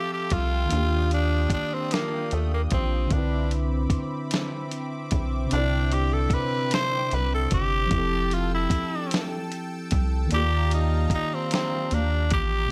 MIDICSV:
0, 0, Header, 1, 6, 480
1, 0, Start_track
1, 0, Tempo, 800000
1, 425, Time_signature, 6, 3, 24, 8
1, 7628, End_track
2, 0, Start_track
2, 0, Title_t, "Analog synth pad"
2, 0, Program_c, 0, 89
2, 0, Note_on_c, 0, 65, 66
2, 0, Note_on_c, 0, 69, 68
2, 0, Note_on_c, 0, 79, 67
2, 0, Note_on_c, 0, 88, 89
2, 409, Note_off_c, 0, 69, 0
2, 409, Note_off_c, 0, 88, 0
2, 421, Note_on_c, 0, 87, 82
2, 423, Note_on_c, 0, 62, 80
2, 1839, Note_off_c, 0, 65, 0
2, 1840, Note_off_c, 0, 79, 0
2, 1849, Note_off_c, 0, 87, 0
2, 1850, Note_off_c, 0, 62, 0
2, 1863, Note_on_c, 0, 76, 69
2, 1864, Note_on_c, 0, 83, 71
2, 1865, Note_on_c, 0, 86, 90
2, 1866, Note_on_c, 0, 60, 76
2, 3290, Note_off_c, 0, 83, 0
2, 3306, Note_on_c, 0, 79, 65
2, 4720, Note_off_c, 0, 76, 0
2, 4721, Note_off_c, 0, 86, 0
2, 4722, Note_off_c, 0, 60, 0
2, 4731, Note_off_c, 0, 79, 0
2, 4741, Note_on_c, 0, 79, 76
2, 4742, Note_on_c, 0, 69, 72
2, 4742, Note_on_c, 0, 88, 89
2, 4743, Note_on_c, 0, 81, 68
2, 6169, Note_off_c, 0, 69, 0
2, 6169, Note_off_c, 0, 88, 0
2, 6183, Note_on_c, 0, 77, 79
2, 6185, Note_on_c, 0, 82, 89
2, 7599, Note_off_c, 0, 79, 0
2, 7600, Note_off_c, 0, 81, 0
2, 7610, Note_off_c, 0, 77, 0
2, 7611, Note_off_c, 0, 82, 0
2, 7628, End_track
3, 0, Start_track
3, 0, Title_t, "Tenor saxophone"
3, 0, Program_c, 1, 66
3, 0, Note_on_c, 1, 67, 94
3, 72, Note_off_c, 1, 67, 0
3, 81, Note_on_c, 1, 67, 86
3, 200, Note_on_c, 1, 65, 102
3, 209, Note_off_c, 1, 67, 0
3, 673, Note_off_c, 1, 65, 0
3, 681, Note_on_c, 1, 62, 91
3, 897, Note_off_c, 1, 62, 0
3, 921, Note_on_c, 1, 62, 91
3, 1046, Note_on_c, 1, 60, 84
3, 1055, Note_off_c, 1, 62, 0
3, 1160, Note_on_c, 1, 58, 86
3, 1169, Note_off_c, 1, 60, 0
3, 1400, Note_on_c, 1, 57, 72
3, 1409, Note_off_c, 1, 58, 0
3, 1513, Note_off_c, 1, 57, 0
3, 1524, Note_on_c, 1, 58, 68
3, 1574, Note_off_c, 1, 58, 0
3, 1639, Note_on_c, 1, 60, 77
3, 1878, Note_on_c, 1, 62, 73
3, 1887, Note_off_c, 1, 60, 0
3, 2112, Note_off_c, 1, 62, 0
3, 3319, Note_on_c, 1, 62, 94
3, 3560, Note_on_c, 1, 67, 87
3, 3569, Note_off_c, 1, 62, 0
3, 3679, Note_on_c, 1, 69, 85
3, 3688, Note_off_c, 1, 67, 0
3, 3803, Note_on_c, 1, 71, 96
3, 3812, Note_off_c, 1, 69, 0
3, 4034, Note_off_c, 1, 71, 0
3, 4048, Note_on_c, 1, 72, 117
3, 4286, Note_on_c, 1, 71, 100
3, 4295, Note_off_c, 1, 72, 0
3, 4396, Note_off_c, 1, 71, 0
3, 4407, Note_on_c, 1, 69, 93
3, 4509, Note_off_c, 1, 69, 0
3, 4525, Note_on_c, 1, 67, 98
3, 5006, Note_on_c, 1, 65, 85
3, 5015, Note_off_c, 1, 67, 0
3, 5116, Note_off_c, 1, 65, 0
3, 5127, Note_on_c, 1, 64, 78
3, 5572, Note_off_c, 1, 64, 0
3, 6207, Note_on_c, 1, 67, 106
3, 6420, Note_off_c, 1, 67, 0
3, 6445, Note_on_c, 1, 63, 79
3, 6659, Note_off_c, 1, 63, 0
3, 6687, Note_on_c, 1, 63, 93
3, 6806, Note_on_c, 1, 60, 83
3, 6815, Note_off_c, 1, 63, 0
3, 6916, Note_off_c, 1, 60, 0
3, 6927, Note_on_c, 1, 60, 86
3, 7168, Note_on_c, 1, 62, 77
3, 7177, Note_off_c, 1, 60, 0
3, 7397, Note_off_c, 1, 62, 0
3, 7401, Note_on_c, 1, 67, 107
3, 7628, Note_off_c, 1, 67, 0
3, 7628, End_track
4, 0, Start_track
4, 0, Title_t, "Tine electric piano"
4, 0, Program_c, 2, 4
4, 0, Control_c, 2, 64, 127
4, 0, Note_on_c, 2, 53, 71
4, 0, Note_on_c, 2, 60, 62
4, 0, Note_on_c, 2, 67, 68
4, 0, Note_on_c, 2, 69, 73
4, 0, Note_on_c, 2, 76, 64
4, 387, Note_off_c, 2, 53, 0
4, 395, Note_on_c, 2, 51, 59
4, 396, Note_off_c, 2, 60, 0
4, 404, Note_off_c, 2, 76, 0
4, 413, Note_off_c, 2, 67, 0
4, 413, Note_on_c, 2, 58, 58
4, 422, Note_off_c, 2, 69, 0
4, 429, Note_on_c, 2, 62, 53
4, 432, Control_c, 2, 64, 0
4, 448, Note_on_c, 2, 65, 54
4, 465, Note_on_c, 2, 67, 70
4, 551, Control_c, 2, 64, 127
4, 1826, Note_off_c, 2, 51, 0
4, 1835, Note_off_c, 2, 58, 0
4, 1839, Note_on_c, 2, 50, 56
4, 1843, Note_off_c, 2, 62, 0
4, 1853, Note_off_c, 2, 65, 0
4, 1855, Note_on_c, 2, 60, 54
4, 1861, Note_off_c, 2, 67, 0
4, 1873, Note_on_c, 2, 62, 51
4, 1874, Control_c, 2, 64, 0
4, 1890, Note_on_c, 2, 64, 55
4, 1908, Note_on_c, 2, 71, 65
4, 1960, Control_c, 2, 64, 127
4, 3268, Note_off_c, 2, 50, 0
4, 3276, Note_off_c, 2, 60, 0
4, 3277, Note_on_c, 2, 48, 65
4, 3285, Note_off_c, 2, 62, 0
4, 3294, Note_off_c, 2, 64, 0
4, 3295, Note_on_c, 2, 60, 55
4, 3303, Note_off_c, 2, 71, 0
4, 3312, Note_on_c, 2, 62, 56
4, 3330, Note_on_c, 2, 64, 58
4, 3347, Note_on_c, 2, 74, 65
4, 4707, Note_off_c, 2, 48, 0
4, 4716, Note_off_c, 2, 60, 0
4, 4718, Note_on_c, 2, 53, 70
4, 4724, Note_off_c, 2, 62, 0
4, 4734, Note_off_c, 2, 64, 0
4, 4737, Note_on_c, 2, 60, 56
4, 4742, Note_off_c, 2, 74, 0
4, 4753, Control_c, 2, 64, 0
4, 4754, Note_on_c, 2, 64, 52
4, 4770, Note_on_c, 2, 67, 54
4, 4789, Note_on_c, 2, 69, 75
4, 4869, Control_c, 2, 64, 127
4, 6148, Note_off_c, 2, 53, 0
4, 6157, Note_off_c, 2, 60, 0
4, 6158, Note_on_c, 2, 51, 64
4, 6166, Note_off_c, 2, 64, 0
4, 6174, Note_off_c, 2, 67, 0
4, 6174, Note_on_c, 2, 58, 62
4, 6183, Note_off_c, 2, 69, 0
4, 6193, Control_c, 2, 64, 0
4, 6193, Note_on_c, 2, 74, 60
4, 6211, Note_on_c, 2, 65, 58
4, 6227, Note_on_c, 2, 67, 73
4, 6292, Control_c, 2, 64, 127
4, 7588, Note_off_c, 2, 51, 0
4, 7595, Note_on_c, 2, 46, 52
4, 7596, Note_off_c, 2, 58, 0
4, 7605, Note_off_c, 2, 74, 0
4, 7614, Note_off_c, 2, 65, 0
4, 7622, Note_off_c, 2, 67, 0
4, 7628, Note_off_c, 2, 46, 0
4, 7628, End_track
5, 0, Start_track
5, 0, Title_t, "Analog synth bass"
5, 0, Program_c, 3, 38
5, 194, Note_on_c, 3, 36, 94
5, 406, Note_off_c, 3, 36, 0
5, 433, Note_on_c, 3, 39, 101
5, 885, Note_off_c, 3, 39, 0
5, 902, Note_on_c, 3, 39, 46
5, 951, Note_off_c, 3, 39, 0
5, 1396, Note_on_c, 3, 39, 87
5, 1607, Note_off_c, 3, 39, 0
5, 1636, Note_on_c, 3, 34, 90
5, 1847, Note_off_c, 3, 34, 0
5, 1870, Note_on_c, 3, 36, 90
5, 2324, Note_off_c, 3, 36, 0
5, 2343, Note_on_c, 3, 35, 45
5, 2392, Note_off_c, 3, 35, 0
5, 3075, Note_on_c, 3, 35, 79
5, 3287, Note_off_c, 3, 35, 0
5, 3315, Note_on_c, 3, 36, 107
5, 3766, Note_off_c, 3, 36, 0
5, 3784, Note_on_c, 3, 36, 47
5, 3832, Note_off_c, 3, 36, 0
5, 4276, Note_on_c, 3, 36, 94
5, 4487, Note_off_c, 3, 36, 0
5, 4517, Note_on_c, 3, 31, 79
5, 4728, Note_off_c, 3, 31, 0
5, 4750, Note_on_c, 3, 29, 92
5, 5204, Note_off_c, 3, 29, 0
5, 5224, Note_on_c, 3, 36, 50
5, 5272, Note_off_c, 3, 36, 0
5, 5957, Note_on_c, 3, 36, 102
5, 6168, Note_off_c, 3, 36, 0
5, 6193, Note_on_c, 3, 39, 102
5, 6645, Note_off_c, 3, 39, 0
5, 6664, Note_on_c, 3, 39, 50
5, 6713, Note_off_c, 3, 39, 0
5, 7153, Note_on_c, 3, 39, 91
5, 7394, Note_on_c, 3, 33, 85
5, 7403, Note_off_c, 3, 39, 0
5, 7606, Note_off_c, 3, 33, 0
5, 7628, End_track
6, 0, Start_track
6, 0, Title_t, "Drums"
6, 182, Note_on_c, 9, 42, 61
6, 190, Note_on_c, 9, 36, 79
6, 242, Note_off_c, 9, 42, 0
6, 250, Note_off_c, 9, 36, 0
6, 423, Note_on_c, 9, 42, 75
6, 483, Note_off_c, 9, 42, 0
6, 667, Note_on_c, 9, 42, 43
6, 727, Note_off_c, 9, 42, 0
6, 898, Note_on_c, 9, 36, 89
6, 902, Note_on_c, 9, 42, 77
6, 958, Note_off_c, 9, 36, 0
6, 962, Note_off_c, 9, 42, 0
6, 1146, Note_on_c, 9, 42, 73
6, 1163, Note_on_c, 9, 38, 102
6, 1206, Note_off_c, 9, 42, 0
6, 1223, Note_off_c, 9, 38, 0
6, 1387, Note_on_c, 9, 42, 47
6, 1447, Note_off_c, 9, 42, 0
6, 1623, Note_on_c, 9, 42, 62
6, 1631, Note_on_c, 9, 36, 82
6, 1683, Note_off_c, 9, 42, 0
6, 1691, Note_off_c, 9, 36, 0
6, 1863, Note_on_c, 9, 42, 66
6, 1865, Note_on_c, 9, 36, 102
6, 1923, Note_off_c, 9, 42, 0
6, 1925, Note_off_c, 9, 36, 0
6, 2107, Note_on_c, 9, 42, 44
6, 2167, Note_off_c, 9, 42, 0
6, 2339, Note_on_c, 9, 36, 89
6, 2342, Note_on_c, 9, 42, 64
6, 2399, Note_off_c, 9, 36, 0
6, 2402, Note_off_c, 9, 42, 0
6, 2585, Note_on_c, 9, 42, 83
6, 2602, Note_on_c, 9, 38, 107
6, 2645, Note_off_c, 9, 42, 0
6, 2662, Note_off_c, 9, 38, 0
6, 2829, Note_on_c, 9, 42, 51
6, 2889, Note_off_c, 9, 42, 0
6, 3065, Note_on_c, 9, 42, 69
6, 3071, Note_on_c, 9, 36, 89
6, 3125, Note_off_c, 9, 42, 0
6, 3131, Note_off_c, 9, 36, 0
6, 3306, Note_on_c, 9, 42, 71
6, 3366, Note_off_c, 9, 42, 0
6, 3549, Note_on_c, 9, 42, 45
6, 3609, Note_off_c, 9, 42, 0
6, 3780, Note_on_c, 9, 36, 97
6, 3783, Note_on_c, 9, 42, 67
6, 3840, Note_off_c, 9, 36, 0
6, 3843, Note_off_c, 9, 42, 0
6, 4026, Note_on_c, 9, 42, 81
6, 4043, Note_on_c, 9, 38, 108
6, 4086, Note_off_c, 9, 42, 0
6, 4103, Note_off_c, 9, 38, 0
6, 4269, Note_on_c, 9, 42, 49
6, 4329, Note_off_c, 9, 42, 0
6, 4505, Note_on_c, 9, 42, 68
6, 4512, Note_on_c, 9, 36, 84
6, 4565, Note_off_c, 9, 42, 0
6, 4572, Note_off_c, 9, 36, 0
6, 4745, Note_on_c, 9, 42, 76
6, 4746, Note_on_c, 9, 36, 112
6, 4805, Note_off_c, 9, 42, 0
6, 4806, Note_off_c, 9, 36, 0
6, 4988, Note_on_c, 9, 42, 47
6, 5048, Note_off_c, 9, 42, 0
6, 5221, Note_on_c, 9, 36, 89
6, 5224, Note_on_c, 9, 42, 78
6, 5281, Note_off_c, 9, 36, 0
6, 5284, Note_off_c, 9, 42, 0
6, 5467, Note_on_c, 9, 42, 83
6, 5484, Note_on_c, 9, 38, 120
6, 5527, Note_off_c, 9, 42, 0
6, 5544, Note_off_c, 9, 38, 0
6, 5710, Note_on_c, 9, 42, 47
6, 5770, Note_off_c, 9, 42, 0
6, 5945, Note_on_c, 9, 42, 72
6, 5952, Note_on_c, 9, 36, 93
6, 6005, Note_off_c, 9, 42, 0
6, 6012, Note_off_c, 9, 36, 0
6, 6184, Note_on_c, 9, 42, 72
6, 6244, Note_off_c, 9, 42, 0
6, 6428, Note_on_c, 9, 42, 53
6, 6488, Note_off_c, 9, 42, 0
6, 6660, Note_on_c, 9, 36, 102
6, 6665, Note_on_c, 9, 42, 74
6, 6720, Note_off_c, 9, 36, 0
6, 6725, Note_off_c, 9, 42, 0
6, 6906, Note_on_c, 9, 42, 74
6, 6923, Note_on_c, 9, 38, 120
6, 6966, Note_off_c, 9, 42, 0
6, 6983, Note_off_c, 9, 38, 0
6, 7147, Note_on_c, 9, 42, 49
6, 7207, Note_off_c, 9, 42, 0
6, 7383, Note_on_c, 9, 42, 72
6, 7390, Note_on_c, 9, 36, 98
6, 7443, Note_off_c, 9, 42, 0
6, 7450, Note_off_c, 9, 36, 0
6, 7628, End_track
0, 0, End_of_file